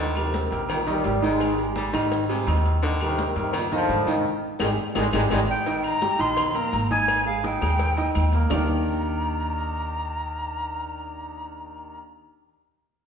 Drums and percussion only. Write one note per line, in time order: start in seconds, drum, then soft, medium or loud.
0.15 high conga soft
0.15 low agogo loud
0.15 claves medium
0.15 maracas soft
0.34 cowbell medium
0.34 high conga loud
0.34 maracas medium
0.51 cowbell medium
0.51 high conga soft
0.51 low agogo medium
0.51 maracas soft
0.69 cowbell loud
0.69 high conga soft
0.69 low conga medium
0.69 low agogo loud
0.69 claves medium
0.69 maracas medium
0.87 cowbell medium
0.87 high conga soft
0.87 low conga medium
0.87 maracas soft
1.04 cowbell medium
1.04 high conga medium
1.04 low timbale medium
1.04 low agogo medium
1.04 maracas medium
1.22 cowbell medium
1.22 high conga medium
1.22 low agogo medium
1.22 maracas soft
1.40 cowbell loud
1.40 high conga soft
1.40 low agogo loud
1.40 claves medium
1.40 maracas medium
1.58 high conga soft
1.58 maracas soft
1.76 cowbell medium
1.76 high conga loud
1.76 low agogo medium
1.76 maracas medium
1.94 cowbell medium
1.94 high conga loud
1.94 low agogo loud
1.94 claves medium
1.94 maracas soft
2.12 cowbell loud
2.12 high conga soft
2.12 maracas medium
2.29 cowbell medium
2.29 high conga soft
2.29 low agogo loud
2.29 maracas soft
2.47 cowbell medium
2.47 high conga medium
2.47 low timbale medium
2.47 low agogo loud
2.47 claves medium
2.47 maracas medium
2.65 cowbell medium
2.65 high conga soft
2.65 maracas soft
2.82 cowbell loud
2.82 high conga soft
2.82 low agogo medium
2.82 maracas medium
3.00 high conga soft
3.00 low agogo loud
3.00 claves medium
3.00 maracas soft
3.18 cowbell medium
3.18 high conga loud
3.18 maracas medium
3.35 cowbell medium
3.35 high conga soft
3.35 low agogo medium
3.35 maracas soft
3.53 cowbell loud
3.53 high conga soft
3.53 low conga medium
3.53 low agogo loud
3.53 claves medium
3.53 maracas medium
3.71 cowbell medium
3.71 high conga soft
3.71 low conga medium
3.71 maracas soft
3.89 cowbell medium
3.89 high conga medium
3.89 low agogo medium
3.89 maracas medium
4.07 cowbell medium
4.07 high conga medium
4.07 low agogo medium
4.07 maracas soft
4.60 cowbell loud
4.60 high conga loud
4.60 high timbale loud
4.60 claves loud
4.60 maracas medium
4.95 cowbell loud
4.95 high conga loud
4.95 high timbale loud
4.95 claves loud
4.95 maracas loud
5.13 cowbell loud
5.13 high conga loud
5.13 high timbale loud
5.13 claves loud
5.13 maracas loud
5.30 cowbell medium
5.30 high conga loud
5.30 high timbale loud
5.30 claves loud
5.30 maracas loud
5.66 cowbell medium
5.66 high conga soft
5.66 low agogo medium
5.66 maracas medium
5.83 high conga soft
5.83 low agogo loud
5.83 claves medium
5.83 maracas soft
6.02 cowbell medium
6.02 high conga loud
6.02 maracas medium
6.19 cowbell medium
6.19 high conga soft
6.19 low agogo medium
6.19 maracas soft
6.37 cowbell loud
6.37 high conga soft
6.37 low conga medium
6.37 low agogo loud
6.37 claves medium
6.37 maracas medium
6.55 cowbell medium
6.55 high conga soft
6.55 maracas soft
6.73 cowbell medium
6.73 high conga medium
6.73 low agogo medium
6.73 maracas medium
6.91 cowbell medium
6.91 high conga medium
6.91 low agogo medium
6.91 maracas soft
7.08 cowbell loud
7.08 high conga soft
7.08 low agogo loud
7.08 claves medium
7.08 maracas medium
7.26 high conga soft
7.26 maracas soft
7.44 cowbell medium
7.44 high conga medium
7.44 low agogo loud
7.44 maracas medium
7.61 cowbell medium
7.61 high conga loud
7.61 low agogo loud
7.61 claves medium
7.61 maracas soft
7.79 cowbell loud
7.79 high conga soft
7.79 maracas medium
7.96 cowbell medium
7.96 high conga soft
7.96 low agogo medium
7.96 maracas soft
8.15 cowbell medium
8.15 high conga medium
8.15 low timbale medium
8.15 low agogo loud
8.15 claves medium
8.15 maracas medium
8.32 cowbell medium
8.32 high conga soft
8.32 maracas soft
8.50 low bongo loud
8.50 low conga loud
8.50 low timbale loud
8.50 claves loud
8.50 maracas loud